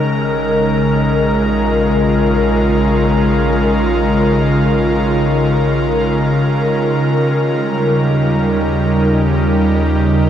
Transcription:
0.00 6.94 A#1 medium
0.00 10.30 C#3 medium
0.00 10.30 D#3 medium
0.00 6.99 G#3 medium
0.00 1.32 D#4 medium
0.00 10.30 D#4 medium
0.00 10.30 A#4 medium
1.21 10.08 F4 medium
6.99 10.30 D#2 medium
7.60 10.30 G3 medium
8.38 10.30 D#4 medium

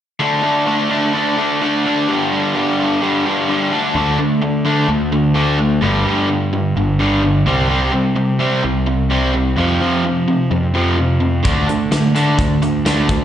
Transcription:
0.20 0.41 D3 medium
0.20 0.42 A3 medium
0.20 0.44 D4 medium
0.43 0.65 D3 medium
0.43 0.66 A3 medium
0.43 0.67 D4 medium
0.66 0.88 D3 medium
0.66 0.89 A3 medium
0.66 0.91 D4 medium
0.90 1.12 D3 medium
0.90 1.13 A3 medium
0.90 1.14 D4 medium
1.13 1.36 D3 medium
1.13 1.37 A3 medium
1.13 1.38 D4 medium
1.37 1.60 D3 medium
1.37 1.61 A3 medium
1.37 1.62 D4 medium
1.61 1.83 D3 medium
1.61 1.84 A3 medium
1.61 1.86 D4 medium
1.85 2.07 D3 medium
1.85 2.07 A3 medium
1.85 3.72 D4 medium
2.07 2.29 G2 medium
2.07 2.30 D3 medium
2.07 2.31 G3 medium
2.30 2.53 G2 medium
2.30 2.54 D3 medium
2.30 2.54 G3 medium
2.54 2.76 G2 medium
2.54 2.78 D3 medium
2.54 2.78 G3 medium
2.78 3.00 G2 medium
2.78 3.01 D3 medium
2.78 3.01 G3 medium
3.01 3.24 G2 medium
3.01 3.25 D3 medium
3.01 3.25 G3 medium
3.25 3.47 G2 medium
3.25 3.48 D3 medium
3.25 3.49 G3 medium
3.48 3.70 G2 medium
3.48 3.70 D3 medium
3.48 3.71 G3 medium
3.71 3.94 D3 medium
3.71 3.94 A3 medium
3.71 3.94 D4 medium
3.95 4.16 D2 medium
3.95 4.17 D3 medium
3.95 4.18 A3 medium
3.95 4.18 D4 medium
4.18 4.85 D3 medium
4.18 4.40 D3 soft
4.18 4.40 A3 medium
4.42 4.63 D3 medium
4.42 4.63 A3 medium
4.65 4.87 D3 medium
4.65 4.88 A3 medium
4.65 4.88 D4 medium
4.88 5.78 D2 medium
4.88 5.10 D3 medium
4.88 5.10 A3 medium
5.12 5.33 D3 medium
5.12 5.34 A3 medium
5.34 5.57 D3 medium
5.34 5.58 A3 medium
5.34 5.58 D4 medium
5.59 5.80 D3 medium
5.59 5.80 A3 medium
5.82 6.04 G1 medium
5.82 6.04 G2 medium
5.82 6.05 D3 medium
5.82 6.05 G3 medium
6.05 6.27 G2 medium
6.05 6.72 G2 medium
6.05 6.28 D3 medium
6.05 6.28 G3 medium
6.29 6.51 G2 medium
6.29 6.51 D3 medium
6.53 6.74 G2 medium
6.53 6.74 D3 medium
6.76 7.42 G1 medium
6.76 6.98 G2 medium
6.76 6.98 D3 medium
6.99 7.22 G2 medium
6.99 7.22 D3 medium
6.99 7.22 G3 medium
7.23 7.44 G2 medium
7.23 7.44 D3 medium
7.46 7.89 C2 medium
7.46 7.68 C3 medium
7.46 7.69 G3 medium
7.46 7.69 C4 medium
7.69 7.91 C3 medium
7.69 7.92 G3 medium
7.69 7.92 C4 medium
7.93 8.14 C3 medium
7.93 8.60 C3 medium
7.93 8.15 G3 medium
8.16 8.38 C3 medium
8.16 8.38 G3 medium
8.39 8.62 C3 medium
8.39 8.62 G3 medium
8.39 8.62 C4 medium
8.63 9.54 C2 medium
8.63 8.85 C3 medium
8.63 8.85 G3 medium
8.86 9.08 C3 medium
8.86 9.08 G3 medium
9.10 9.32 C3 medium
9.10 9.33 G3 medium
9.10 9.33 C4 medium
9.34 9.55 C3 medium
9.34 9.55 G3 medium
9.57 9.79 F2 medium
9.57 9.80 C3 medium
9.57 9.80 F3 medium
9.80 10.03 F2 medium
9.80 10.03 C3 medium
9.80 10.47 F3 medium
9.80 10.03 F3 medium
10.04 10.25 F2 medium
10.04 10.26 C3 medium
10.28 10.49 F2 medium
10.28 10.49 C3 medium
10.51 10.72 F2 medium
10.51 11.41 F2 medium
10.51 10.72 C3 medium
10.74 10.96 F2 medium
10.74 10.97 C3 medium
10.74 10.97 F3 medium
10.98 11.19 F2 medium
10.98 11.19 C3 medium
11.21 11.42 F2 medium
11.21 11.42 C3 medium
11.44 11.66 D2 medium
11.44 11.66 D3 medium
11.44 11.67 A3 medium
11.44 11.67 D4 medium
11.44 kick loud
11.44 closed hi-hat medium
11.68 11.89 D3 soft
11.68 12.35 D3 medium
11.68 11.89 A3 medium
11.68 closed hi-hat soft
11.91 12.13 D3 medium
11.91 12.13 A3 medium
11.91 snare medium
11.91 closed hi-hat medium
12.15 12.37 D3 medium
12.15 12.37 A3 medium
12.15 12.38 D4 medium
12.15 closed hi-hat medium
12.38 13.24 D2 medium
12.38 12.60 D3 medium
12.38 12.60 A3 medium
12.38 kick medium
12.38 closed hi-hat medium
12.62 12.83 D3 medium
12.62 12.83 A3 medium
12.62 closed hi-hat medium
12.85 13.07 D3 medium
12.85 13.08 A3 medium
12.85 13.08 D4 medium
12.85 snare loud
12.85 closed hi-hat medium
13.09 13.24 D3 medium
13.09 13.24 A3 medium
13.09 kick medium
13.09 closed hi-hat medium

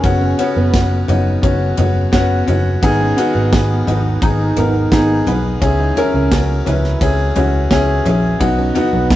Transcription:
0.00 0.32 F#1 loud
0.00 0.28 B3 loud
0.00 0.42 C#4 loud
0.00 kick loud
0.00 ride medium
0.04 1.05 C#3 medium
0.04 0.28 C#4 medium
0.04 0.29 F#4 loud
0.21 0.38 C#4 medium
0.38 0.63 B3 medium
0.38 1.44 B3 medium
0.38 0.63 C#4 medium
0.38 0.63 F#4 loud
0.38 ride medium
0.56 0.70 F#1 medium
0.56 0.73 B3 medium
0.73 1.02 F#1 loud
0.73 0.98 B3 medium
0.73 0.98 C#4 medium
0.73 0.98 F#4 medium
0.73 kick loud
0.73 snare loud
0.73 ride medium
1.08 1.37 F#1 medium
1.08 1.32 B3 medium
1.08 1.33 C#4 medium
1.08 1.57 D#4 medium
1.08 1.33 F#4 medium
1.08 floor tom medium
1.08 ride medium
1.42 1.72 F#1 loud
1.42 1.67 B3 medium
1.42 1.67 C#4 medium
1.42 1.68 F#4 loud
1.42 kick loud
1.42 ride medium
1.77 2.07 F#1 loud
1.77 2.02 B3 medium
1.77 2.02 C#4 medium
1.77 1.95 C#4 medium
1.77 2.03 F#4 medium
1.77 floor tom medium
1.77 ride medium
2.12 2.41 F#1 loud
2.12 2.37 B3 loud
2.12 2.37 C#4 loud
2.12 2.38 F#4 loud
2.12 kick loud
2.12 snare loud
2.12 ride medium
2.47 2.77 F#1 medium
2.47 2.72 B3 medium
2.47 2.72 C#4 medium
2.47 2.73 F#4 loud
2.47 floor tom medium
2.47 ride medium
2.82 3.11 G#1 loud
2.82 3.83 G#2 medium
2.82 3.83 D#3 medium
2.82 3.07 B3 loud
2.82 3.07 D#4 loud
2.82 3.08 G#4 loud
2.82 kick loud
2.82 ride medium
3.00 3.17 C#4 medium
3.17 3.42 B3 loud
3.17 3.42 D#4 loud
3.17 3.42 F#4 loud
3.17 ride medium
3.35 3.49 G#1 medium
3.35 3.52 B3 medium
3.51 3.81 G#1 loud
3.51 3.76 B3 medium
3.51 4.25 B3 loud
3.51 3.77 D#4 medium
3.51 3.77 G#4 medium
3.51 kick loud
3.51 snare loud
3.51 ride medium
3.86 4.16 G#1 medium
3.86 4.11 B3 medium
3.86 4.12 D#4 medium
3.86 4.36 D#4 medium
3.86 4.12 F#4 medium
3.86 floor tom medium
3.86 ride medium
4.21 4.51 G#1 loud
4.21 4.46 B3 medium
4.21 4.47 D#4 medium
4.21 4.92 D#4 loud
4.21 4.47 G#4 medium
4.21 kick loud
4.21 ride medium
4.56 4.85 G#1 loud
4.56 4.81 B3 medium
4.56 4.74 B3 medium
4.56 4.82 D#4 medium
4.56 4.82 A#4 medium
4.56 floor tom medium
4.56 ride medium
4.91 5.20 G#1 loud
4.91 5.16 B3 loud
4.91 5.17 D#4 medium
4.91 5.30 D#4 loud
4.91 5.17 G#4 loud
4.91 kick loud
4.91 snare loud
4.91 ride medium
5.26 5.55 B1 medium
5.26 5.51 B3 medium
5.26 5.97 B3 loud
5.26 5.51 D#4 medium
5.26 5.52 B4 medium
5.26 floor tom medium
5.26 ride medium
5.60 5.90 C#2 loud
5.60 6.62 G#2 medium
5.60 5.86 C#4 medium
5.60 5.86 E4 medium
5.60 5.86 G#4 loud
5.60 kick loud
5.60 ride medium
5.79 5.96 D#4 medium
5.96 6.21 C#4 medium
5.96 6.98 C#4 medium
5.96 6.21 E4 medium
5.96 6.22 A#4 loud
5.96 floor tom medium
5.96 ride medium
6.14 6.28 C#2 medium
6.14 6.31 C#4 medium
6.31 6.60 C#2 loud
6.31 6.56 C#4 medium
6.31 6.56 E4 medium
6.31 6.56 F#4 medium
6.31 kick loud
6.31 snare loud
6.31 ride medium
6.65 6.95 C#2 medium
6.65 6.90 C#4 medium
6.65 6.91 E4 medium
6.65 7.16 E4 medium
6.65 6.91 B4 medium
6.65 floor tom medium
6.65 ride medium
6.84 snare soft
7.00 7.30 C#2 loud
7.00 7.25 C#4 medium
7.00 7.26 E4 medium
7.00 7.26 G#4 loud
7.00 kick loud
7.00 ride medium
7.36 7.65 C#2 loud
7.36 7.60 C#4 medium
7.36 7.53 C#4 medium
7.36 7.61 E4 medium
7.36 7.61 F#4 loud
7.36 floor tom medium
7.36 ride medium
7.70 7.99 C#2 medium
7.70 7.95 C#4 loud
7.70 7.96 E4 loud
7.70 7.96 G#4 loud
7.70 kick loud
7.70 snare loud
7.70 ride medium
8.05 8.34 A#1 medium
8.05 8.30 C#4 medium
8.05 8.30 E4 medium
8.05 8.31 G#4 loud
8.05 floor tom medium
8.05 ride medium
8.39 8.69 B1 loud
8.39 8.64 B3 loud
8.39 8.65 D#4 loud
8.39 8.65 F#4 loud
8.39 kick loud
8.39 ride medium
8.58 8.75 C#4 medium
8.75 8.99 B3 loud
8.75 9.00 D#4 loud
8.75 9.00 F#4 loud
8.75 floor tom medium
8.75 ride medium
8.93 9.07 B1 medium
8.93 9.10 B3 medium
9.09 9.16 B1 loud
9.09 9.16 B3 medium
9.09 9.16 B3 loud
9.09 9.16 D#4 medium
9.09 9.16 F#4 medium
9.09 kick loud
9.09 snare loud
9.09 ride medium

